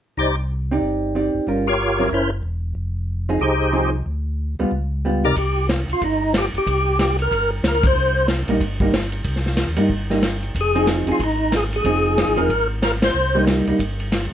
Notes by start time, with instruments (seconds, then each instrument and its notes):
0.17 tonewheel organ C2 D#4 G4 C5 D5
0.71 hollow-body jazz guitar C4 D#4 G4 D5
0.81 tonewheel organ G1
1.15 hollow-body jazz guitar C4 D#4 G4 D5
1.34 tonewheel organ G1
1.47 tonewheel organ G1, hollow-body jazz guitar G3 C#4 F4 A#4
1.67 tonewheel organ F4 G4 A#4 C#5
2.00 hollow-body jazz guitar F#3 C4 E4 A#4
2.11 tonewheel organ F#1 C#4 E4 A#4 C5
2.43 tonewheel organ E1
2.75 tonewheel organ F1
3.29 hollow-body jazz guitar F3 C4 D#4 G#4
3.40 tonewheel organ C2 D#4 G4 G#4 C5
3.73 hollow-body jazz guitar F3 C4 D#4 G#4
4.06 tonewheel organ D2
4.59 tonewheel organ D2, hollow-body jazz guitar G3 B3 F4
4.71 tonewheel organ C#2
5.05 hollow-body jazz guitar G3 B3 F4
5.24 tonewheel organ C3 D#4 G4 A#4 D5
5.36 tonewheel organ C2 G4, kick, ride
5.69 snare, hi-hat pedal, ride
5.88 tonewheel organ C2, ride
5.93 tonewheel organ F4
6.01 tonewheel organ G1 D#4, kick, ride
6.34 tonewheel organ G4, snare, hi-hat pedal, ride
6.54 tonewheel organ G1, ride
6.58 tonewheel organ G4
6.66 tonewheel organ C2, kick, ride
6.99 snare, hi-hat pedal, ride
7.18 tonewheel organ A#4, ride
7.31 tonewheel organ G1, kick, ride
7.63 tonewheel organ C#2, snare, hi-hat pedal, ride
7.68 tonewheel organ A#4
7.83 tonewheel organ C5, kick, ride
7.95 tonewheel organ C2
8.28 snare, hi-hat pedal, ride
8.48 tonewheel organ A#1, hollow-body jazz guitar G3 A#3 D#4, ride
8.60 tonewheel organ G1, kick, ride
8.80 hollow-body jazz guitar G3 A#3 D#4, kick
8.93 snare, hi-hat pedal, ride
9.12 ride
9.24 tonewheel organ C2, kick, ride
9.36 snare
9.46 snare
9.57 snare, hi-hat pedal, ride
9.67 tonewheel organ D#2
9.76 tonewheel organ G2, hollow-body jazz guitar G3 A#3 D#4, ride
9.89 tonewheel organ G1, kick
10.10 hollow-body jazz guitar G3 A#3 D#4, snare
10.22 snare, hi-hat pedal, ride
10.43 ride
10.55 tonewheel organ F1, kick, ride
10.61 tonewheel organ G#4
10.75 hollow-body jazz guitar F3 C4 D#4 G#4, ride
10.87 snare, hi-hat pedal, ride
11.06 tonewheel organ F1, hollow-body jazz guitar F3 C4 D#4 G#4, ride
11.12 tonewheel organ F4
11.19 tonewheel organ G#1, kick, ride
11.24 tonewheel organ D#4
11.52 tonewheel organ G#4, snare, hi-hat pedal, ride
11.73 tonewheel organ G#4, ride
11.84 tonewheel organ F1, hollow-body jazz guitar F3 C4 D#4 G#4, kick, ride
12.18 snare, hi-hat pedal, ride
12.27 tonewheel organ G#1
12.36 tonewheel organ E1 A#4, hollow-body jazz guitar F3 C4 D#4 G#4, ride
12.49 tonewheel organ G#1, kick, ride
12.82 tonewheel organ A#4, snare, hi-hat pedal, ride
13.02 tonewheel organ C5, snare, ride
13.14 tonewheel organ C2
13.35 hollow-body jazz guitar G3 A#3 D#4
13.47 snare, hi-hat pedal, ride
13.67 tonewheel organ C2, hollow-body jazz guitar G3 A#3 D#4, ride
13.79 tonewheel organ G1, kick, ride
14.00 ride
14.12 snare, hi-hat pedal, ride